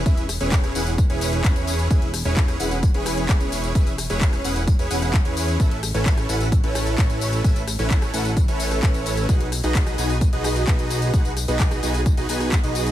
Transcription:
<<
  \new Staff \with { instrumentName = "Supersaw synth" } { \time 4/4 \key e \major \tempo 4 = 130 <cis' e' e''>8 r16 <cis' e' gis' b' cis''>8. <cis' e' gis' b' fis''>8 r16 <cis' e' gis' b' cis''>8. <cis' e' gis' cis''>4 | <cis' e' gis' b' e''>8 r16 <cis' e' gis' b' cis''>8. <cis' e' gis' b' fis''>8 r16 <cis' e' gis' b' cis''>8. <cis' cis''>4 | <cis' e' b'>8 r16 <cis' e' gis' b' cis''>8. <cis' e' gis' b' fis''>8 r16 <cis' e' gis' b' cis''>16 <cis' e' gis' b' fis''>8 r16 <cis' e' gis' b' cis''>8. | <cis' e' a' b' e''>8 r16 <cis' e' a' b' cis''>8. <cis' e' a' b' fis''>8 r16 <cis' e' a' b' cis''>8. <cis' e' a' b' cis''>4 |
<cis' a'>8 r16 <cis' e' a' b' cis''>8. <cis' e' a' b' fis''>8 r16 <cis' e' a' b' cis''>8. r4 | <dis' fis' gis' b' fis''>8 r16 <dis' fis' gis' b' dis''>8. <dis' fis' gis' b' gis''>8 r16 <dis' fis' gis' b' dis''>8. b'4 | <dis' fis' gis' b' fis''>8 r16 <dis' fis' gis' b' dis''>8. <dis' fis' gis' b' gis''>8 r16 <dis' fis' gis' b' dis''>16 <dis' fis' gis' b' gis''>8 r16 <dis' fis' gis' b' dis''>8. | }
  \new Staff \with { instrumentName = "Analog synth bass" } { \clef bass \time 4/4 \key e \major e,,8. e,,8. e,,8. e,,8. e,,4 | e,,8. e,,8. e,,8. e,,8. e,,4 | e,,8. e,,8. e,,8. e,,16 e,,8. e,8. | a,,8. a,,8. a,,8. a,,8. a,,4 |
a,,8. a,,8. a,,8. a,,8. a,,4 | b,,8. b,,8. b,,8. b,,8. b,,4 | b,,8. b,,8. b,,8. b,,16 b,,8. b,,8. | }
  \new DrumStaff \with { instrumentName = "Drums" } \drummode { \time 4/4 <hh bd tamb>16 <hh tamb>16 <hho ss tamb>16 <hh tamb>16 <hc hh bd tamb>16 <hh ss tamb>16 <hho tamb>16 <hh tamb>16 <hh bd tamb>16 <hh tamb>16 <hho tamb>16 <hh ss tamb>16 <hc hh bd tamb>16 <hh tamb>16 <hho tamb>16 <hh tamb>16 | <hh bd tamb>16 hh16 <hho ss tamb>16 <hh tamb>16 <hc hh bd tamb>16 <hh ss tamb>16 <hho tamb>16 <hh tamb>16 <hh bd tamb>16 hh16 <hho ss tamb>16 <hh tamb>16 <hc hh bd tamb>16 <hh tamb>16 <hho tamb>16 <hh tamb>16 | <hh bd tamb>16 <hh tamb>16 <hho ss tamb>16 <hh tamb>16 <hc hh bd tamb>16 <hh ss tamb>16 <hho tamb>16 <hh tamb>16 <hh bd tamb>16 <hh tamb>16 <hho tamb>16 <hh ss tamb>16 <hc hh bd tamb>16 <hh tamb>16 <hho tamb>16 <hh tamb>16 | <hh bd tamb>16 hh16 <hho ss tamb>16 <hh tamb>16 <hc hh bd tamb>16 <hh ss tamb>16 <hho tamb>16 <hh tamb>16 <hh bd tamb>16 hh16 <hho ss tamb>16 <hh tamb>16 <hc hh bd tamb>16 <hh tamb>16 <hho tamb>16 <hh tamb>16 |
<hh bd tamb>16 <hh tamb>16 <hho ss tamb>16 <hh tamb>16 <hc hh bd tamb>16 <hh ss tamb>16 <hho tamb>16 <hh tamb>16 <hh bd tamb>16 <hh tamb>16 <hho tamb>16 <hh ss tamb>16 <hc hh bd tamb>16 <hh tamb>16 <hho tamb>16 <hh tamb>16 | <hh bd tamb>16 hh16 <hho ss tamb>16 <hh tamb>16 <hc hh bd tamb>16 <hh ss tamb>16 <hho tamb>16 <hh tamb>16 <hh bd tamb>16 hh16 <hho ss tamb>16 <hh tamb>16 <hc hh bd tamb>16 <hh tamb>16 <hho tamb>16 <hh tamb>16 | <hh bd tamb>16 <hh tamb>16 <hho ss tamb>16 <hh tamb>16 <hc hh bd tamb>16 <hh ss tamb>16 <hho tamb>16 <hh tamb>16 <hh bd tamb>16 <hh tamb>16 <hho tamb>16 <hh ss tamb>16 <hc hh bd tamb>16 <hh tamb>16 <hho tamb>16 <hh tamb>16 | }
>>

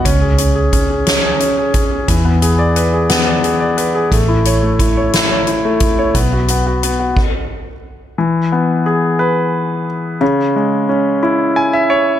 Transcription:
<<
  \new Staff \with { instrumentName = "Grand piano" } { \time 6/8 \key e \major \tempo 4. = 59 << { r2. | r2. | r2. | r2. |
r2. | r2 gis''16 e''16 cis''8 | } \\ { cis'16 gis'16 cis'16 gis'16 cis'16 gis'16 cis'16 gis'16 cis'16 gis'16 cis'16 gis'16 | e16 b16 gis'16 d''16 b'16 gis'16 b16 d''16 gis'16 d''16 b'16 gis'16 | a16 e'16 cis''16 a16 e'16 cis''16 e'16 cis''16 e'16 a16 e'16 cis''16 | b16 fis'16 b16 fis'16 b16 fis'16 r4. |
e8 b8 gis'8 b'4. | cis8 gis8 cis'8 e'4. | } >> }
  \new Staff \with { instrumentName = "Fingered electric bass" } { \clef bass \time 6/8 \key e \major cis,2. | e,2. | a,,2. | b,,4. r4. |
r2. | r2. | }
  \new DrumStaff \with { instrumentName = "Drums" } \drummode { \time 6/8 <hh bd>8 hh8 <hh bd>8 <hh sn>8 hh8 <hh bd>8 | <hh bd>8 hh8 hh8 <hh sn>8 hh8 hh8 | <hh bd>8 hh8 <hh bd>8 <hh sn>8 hh8 <hh bd>8 | <hh bd>8 hh8 hh8 <cymc bd>4. |
r4. r4. | r4. r4. | }
>>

